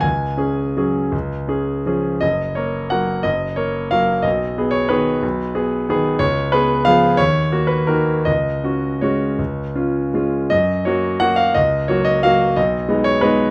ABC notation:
X:1
M:3/4
L:1/8
Q:1/4=175
K:F#
V:1 name="Grand piano"
g6- | g4 z2 | d2 c2 f2 | d2 c2 e2 |
d3 c B2- | B4- B z | c2 B2 e2 | c3 B A2 |
d4 c2- | c4 z2 | d2 c2 f e | d2 c d e2 |
d3 c B2 |]
V:2 name="Grand piano"
C,,2 [CG]2 [F,CG]2 | C,,2 [CG]2 [E,CG]2 | F,,,2 [A,A]2 [F,A,A]2 | F,,,2 [A,A]2 [F,A,A]2 |
B,,,2 [B,G]2 [D,B,G]2 | B,,,2 [B,G]2 [D,B,G]2 | C,,2 [B,G]2 [E,B,G]2 | D,,2 [A,F]2 [D,A,F]2 |
C,,2 [CF]2 [G,CF]2 | C,,2 [CE]2 [G,CE]2 | F,,2 [F,A,F]2 [F,A,F]2 | C,,2 [F,A,F]2 [F,A,F]2 |
B,,,2 [G,B,D]2 [G,B,D]2 |]